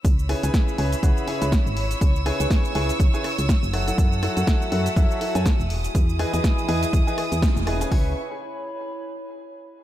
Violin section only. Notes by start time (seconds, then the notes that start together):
0.05 C#5 B5 E6
2.01 C#6
3.74 A4 F#5
5.70 E4 G#4 D#6
7.92 B4 E5 C#6